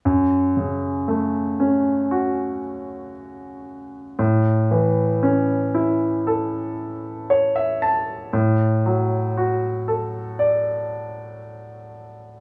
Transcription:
\new Staff \with { instrumentName = "Grand piano" } { \time 4/4 \key fis \minor \tempo 4 = 58 << { r1 | r2. cis''16 e''16 a''8 | r1 | } \\ { fis,8 cis8 a8 cis'8 fis'2 | a,8 e8 cis'8 e'8 a'2 | a,8 fis8 fis'8 a'8 d''2 | } >> }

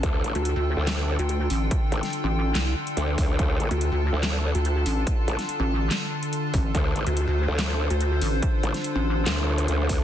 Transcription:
<<
  \new Staff \with { instrumentName = "Ambient pad" } { \time 4/4 \key d \minor \tempo 4 = 143 << { g''1~ | g''1 | a''1~ | a''1 |
c''1~ | c''1 | } \\ { <d d' f' a'>1~ | <d d' f' a'>1~ | <d d' f' a'>1~ | <d d' f' a'>1~ |
<d d' f' a'>1~ | <d d' f' a'>1 | } >> }
  \new Staff \with { instrumentName = "Wobble bass" } { \clef bass \time 4/4 \key d \minor d,8 a,,16 r4 d,4 r4 r16 | r8 a,,16 r2 r16 d,8 d,8 | d,8 a,,16 r4 d,4 r4 r16 | r8 a,,16 r2. r16 |
d,8 a,,16 r4 d,4 r4 r16 | r8 a,,16 r4 r16 d,4 d,4 | }
  \new Staff \with { instrumentName = "Wobble bass" } { \clef bass \time 4/4 \key d \minor r8. d,8 d,8 r4 d,8. a,,8 | r4 r16 a,,8. c,8 r4. | r8. d,8 d,8 r4 d,8. a,,8 | r4 r16 a,,8. r4. a,,8 |
r8. d,8 d,8 r4 d,8. a,,8 | r4 r16 a,,8. r2 | }
  \new DrumStaff \with { instrumentName = "Drums" } \drummode { \time 4/4 <hh bd>8 hh16 hh16 hh4 <hc hh sn>8. hh16 hh8 hho8 | <hh bd>8 hh16 <hh sn>16 hh4 <hc hh sn>8. hh16 hh8 <hho bd>8 | <hh bd>8 hh16 hh16 hh4 <hc hh sn>8. hh16 hh8 hho8 | <hh bd>8 hh16 <hh sn>16 hh4 <hc hh sn>8. hh16 hh8 <hho bd>8 |
<hh bd>8 hh16 hh16 hh4 <hc hh sn>8. hh16 hh8 hho8 | <hh bd>8 hh16 <hh sn>16 hh4 <hc hh sn>8. hh16 hh8 <hho bd>8 | }
>>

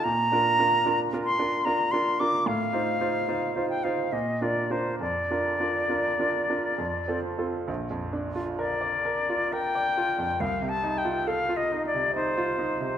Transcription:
<<
  \new Staff \with { instrumentName = "Flute" } { \time 3/4 \key bes \major \tempo 4 = 69 bes''4. c'''8 \tuplet 3/2 { bes''8 c'''8 d'''8 } | f''4~ \tuplet 3/2 { f''8. g''16 f''8 ees''8 d''8 c''8 } | d''2~ d''8 r8 | r4 d''4 g''4 |
\tuplet 3/2 { f''8 a''8 g''8 f''8 ees''8 d''8 } c''4 | }
  \new Staff \with { instrumentName = "Grand piano" } { \time 3/4 \key bes \major \tuplet 3/2 { bes,8 <d' f' bes'>8 <d' f' bes'>8 <d' f' bes'>8 <d' f' bes'>8 <d' f' bes'>8 <d' f' bes'>8 <d' f' bes'>8 <d' f' bes'>8 } | \tuplet 3/2 { a,8 <ees' f' c''>8 <ees' f' c''>8 <ees' f' c''>8 <ees' f' c''>8 <ees' f' c''>8 bes,8 <d' f' bes'>8 <d' f' bes'>8 } | \tuplet 3/2 { f,8 <d' f' bes'>8 <d' f' bes'>8 <d' f' bes'>8 <d' f' bes'>8 <d' f' bes'>8 f,8 <c' f' a'>8 <c' f' a'>8 } | bes,,16 f,16 d'16 f'16 bes'16 d''16 bes'16 f'16 bes'16 d''16 f'16 f,16 |
c,16 c16 ees'16 f'16 a'16 f'16 ees'16 c16 ees'16 f'16 ees'16 c16 | }
>>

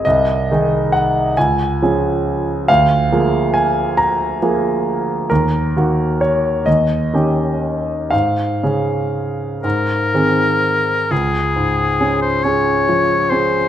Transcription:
<<
  \new Staff \with { instrumentName = "Oboe" } { \time 6/8 \key des \major \tempo 4. = 45 r2. | r2. | r2. | r4. bes'4. |
aes'4~ aes'16 c''16 des''4 c''8 | }
  \new Staff \with { instrumentName = "Grand piano" } { \time 6/8 \key des \major ees''4 ges''8 aes''4. | f''4 aes''8 bes''4. | bes'4 des''8 ees''4. | f''2~ f''8 r8 |
r2. | }
  \new Staff \with { instrumentName = "Grand piano" } { \time 6/8 \key des \major c,8 <ees ees' aes'>4 des,8 <f des' aes'>4 | d,8 <f bes aes'>4. <f bes aes'>4 | ees,8 <ees bes ges'>4 ees,8 <ees des' g'>4 | aes,8 <des des' aes'>4 aes,8 <ees c' aes'>4 |
des,8 aes,8 <des' aes'>8 <des' aes'>8 f8 <des' aes'>8 | }
>>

